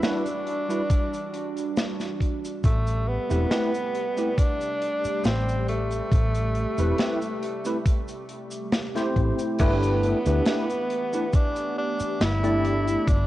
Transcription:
Already playing: E3 G3 D4 F#4
0.03 G3 D4 E4 F#4 B4, snare, closed hi-hat, cabasa
0.26 closed hi-hat, cabasa
0.47 closed hi-hat
0.69 G3 D4 E4 F#4 B4, closed hi-hat, cabasa
0.90 kick, closed hi-hat, cabasa
1.14 closed hi-hat, cabasa
1.34 closed hi-hat
1.57 closed hi-hat, cabasa
1.77 snare, closed hi-hat, cabasa
2.00 snare, closed hi-hat, cabasa
2.20 C3 G3 A3 G4, kick, closed hi-hat
2.45 closed hi-hat, cabasa
2.64 A1 A3, kick, closed hi-hat, cabasa
2.87 closed hi-hat, cabasa
3.08 B3
3.30 E1 A3 C4 E4 G4 B4, closed hi-hat, cabasa
3.50 A3 C4 E4 G4 B4, snare, closed hi-hat, cabasa
3.74 closed hi-hat, cabasa
3.95 closed hi-hat
4.17 A3 C4 E4 G4 B4, closed hi-hat, cabasa
4.38 D4, kick, closed hi-hat, cabasa
4.61 closed hi-hat, cabasa
4.81 closed hi-hat
5.04 muted fingered electric bass stroke, closed hi-hat, cabasa
5.24 A1 C4, snare, closed hi-hat, cabasa
5.49 closed hi-hat, cabasa
5.68 A3, closed hi-hat
5.91 closed hi-hat, cabasa
6.12 A1, kick, closed hi-hat, cabasa
6.35 closed hi-hat, cabasa
6.55 closed hi-hat
6.78 E1 A3 C4 E4 G4 B4, closed hi-hat, cabasa
6.98 A3 C4 E4 G4 B4, snare, closed hi-hat, cabasa
7.22 closed hi-hat, cabasa
7.43 closed hi-hat
7.65 A3 C4 E4 G4 B4, closed hi-hat, cabasa
7.86 kick, closed hi-hat, cabasa
8.08 closed hi-hat, cabasa
8.29 closed hi-hat
8.51 closed hi-hat, cabasa
8.72 snare, closed hi-hat, cabasa
8.95 A3 C4 E4 G4 C5, snare, closed hi-hat, cabasa
9.16 A1, kick, closed hi-hat
9.39 closed hi-hat, cabasa
9.59 G1 E3 A3 B3 D4 E4 G4 B4, kick, closed hi-hat, crash, cabasa
9.83 closed hi-hat, cabasa
10.03 closed hi-hat
10.26 D2 A3 D4 E4 G4 B4, closed hi-hat, cabasa
10.45 A3 D4 E4 G4 B4, snare, closed hi-hat, cabasa
10.70 closed hi-hat, cabasa
10.90 closed hi-hat
11.13 A3 D4 E4 G4 B4, closed hi-hat, cabasa
11.33 D4, kick, closed hi-hat, cabasa
11.56 closed hi-hat, cabasa
11.78 D4
12.00 muted fingered electric bass stroke, closed hi-hat, cabasa
12.20 G1 E4, snare, closed hi-hat, cabasa
12.43 A3 D4 E4 G4 D5, closed hi-hat, cabasa
12.65 closed hi-hat
12.87 closed hi-hat, cabasa
13.07 G1 E3 G3 D4 F#4, kick, closed hi-hat, cabasa

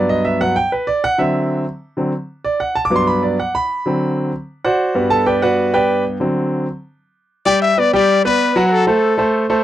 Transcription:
Already playing: G2 F#3 B3
0.09 D#5
0.25 E5
0.41 G2 F#3 B3 F#5
0.56 G5
0.72 B4
0.87 D5
1.04 F#5
1.18 D3 F#3 C4 E5
1.97 D3 F#3 C4
2.45 D5
2.60 F#5
2.75 A5
2.85 D6
2.90 G2 F#3 B3
2.96 C6
3.07 B5
3.23 D5
3.40 F#5
3.55 B5
3.86 D3 F#3 C4
4.65 F#4 C5 D5 F#5
4.95 G2 G3 B3
5.10 A4 A5
5.26 G4 B4 D5 G5
5.42 F#4 B4 D5 F#5
5.74 G4 B4 D5 G5
6.20 D3 F#3 C4
7.46 G3 G4 D5 G5
7.62 E5
7.78 B3 B4 D5
7.93 G3 G4 D5 G5
8.25 B3 B4 D5
8.56 F#3 F#4 F#5
8.68 A4 B4
8.87 A3 A4 C5
9.18 A3 A4 C5
9.50 A3 A4 C5

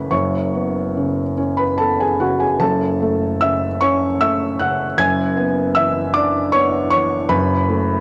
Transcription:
Already playing: C#3 A3 C#4 B4 B5
0.11 F#1 F#2 C#5 C#6
0.54 B3
0.97 C#3
1.38 C#4
1.57 B4 B5
1.78 B3 A4 A5
2.00 G#4 G#5
2.20 C#3 F#4 F#5
2.40 G#4 G#5
2.59 F#1 F#2 A4 A5
3.02 A3
3.41 C#3 E5 E6
3.81 C#4 C#5 C#6
4.21 A3 E5 E6
4.59 C#3 F#5 F#6
4.98 F#1 F#2 G#5 G#6
5.37 B3
5.75 E3 E5 E6
6.14 D4 D5 D6
6.52 B3 C#5 C#6
6.91 E3 C#5 C#6
7.29 F#1 F#2 B4 B5
7.69 A3

